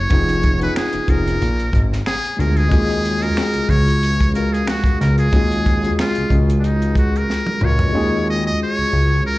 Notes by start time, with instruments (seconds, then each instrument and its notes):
Already playing: tine electric piano A#3 C#4 E4 F#4 G4, muted trumpet C#5
0.09 analog synth bass F1, tine electric piano B3 C#4 D#4 F4 G#4, kick, closed hi-hat
0.29 closed hi-hat
0.43 kick, closed hi-hat
0.59 tine electric piano B3 C#4 D#4 F4, muted trumpet B4, closed hi-hat
0.63 tine electric piano G#4
0.76 muted trumpet G#4, finger snap, snare
0.93 analog synth bass F1, closed hi-hat
1.08 analog synth bass F1, tine electric piano B3 C#4 D#4 F4, muted trumpet A#4, kick, closed hi-hat
1.12 tine electric piano G#4
1.27 closed hi-hat
1.42 analog synth bass A#1, closed hi-hat
1.60 closed hi-hat
1.73 analog synth bass G#1, kick, closed hi-hat
1.93 snare, closed hi-hat
2.06 muted trumpet G#4, finger snap, snare
2.25 closed hi-hat
2.37 analog synth bass D2, tine electric piano G#3 B3 D4 F4, muted trumpet A#4, closed hi-hat
2.41 tine electric piano G#4
2.57 muted trumpet G#4, closed hi-hat
2.69 analog synth bass D#2, tine electric piano G#3 C#4 F4 F#4, kick, closed hi-hat
2.73 tine electric piano G#4
2.90 closed hi-hat
3.05 closed hi-hat
3.20 tine electric piano G#3 C#4 F4 F#4, muted trumpet A#4, closed hi-hat
3.25 tine electric piano G#4
3.37 finger snap, snare
3.54 analog synth bass C#2, closed hi-hat
3.69 analog synth bass C#2, muted trumpet C#5, kick, closed hi-hat
3.88 closed hi-hat
4.03 closed hi-hat
4.21 kick, closed hi-hat
4.34 tine electric piano G#3 C#4 F#4 F5, muted trumpet A#4, closed hi-hat
4.38 tine electric piano A#4
4.53 muted trumpet G#4, closed hi-hat
4.67 muted trumpet F#4, finger snap, snare
4.84 kick, closed hi-hat
5.01 analog synth bass C#2, muted trumpet A#4, snare, closed hi-hat
5.18 muted trumpet G#4, closed hi-hat
5.32 analog synth bass D#2, tine electric piano G#3 C#4 F4 F#4, kick, closed hi-hat
5.36 tine electric piano G#4
5.52 closed hi-hat
5.66 kick, closed hi-hat
5.82 tine electric piano G#3 C#4 F4 F#4, closed hi-hat
5.86 tine electric piano G#4
5.99 muted trumpet F4, finger snap, snare
6.15 analog synth bass C#2, closed hi-hat
6.30 analog synth bass C#2, tine electric piano G#3 C#4 F4 F#4, kick, closed hi-hat
6.34 tine electric piano G#4
6.50 closed hi-hat
6.59 muted trumpet D4
6.64 muted trumpet D#4, closed hi-hat
6.82 closed hi-hat
6.95 muted trumpet F#4, kick, closed hi-hat
7.16 muted trumpet A#4, closed hi-hat
7.30 snare
7.47 high tom
7.61 analog synth bass C#2, tine electric piano G#3 C#4 F4 F#4 A#4, muted trumpet C#5, mid tom
7.79 floor tom
7.93 analog synth bass D#2, tine electric piano G#3 C#4 F4 F#4
7.97 tine electric piano G#4
8.30 muted trumpet D#5
8.47 muted trumpet D#5
8.63 muted trumpet C#5
8.78 analog synth bass C#2
8.93 analog synth bass C#2
9.26 muted trumpet A#4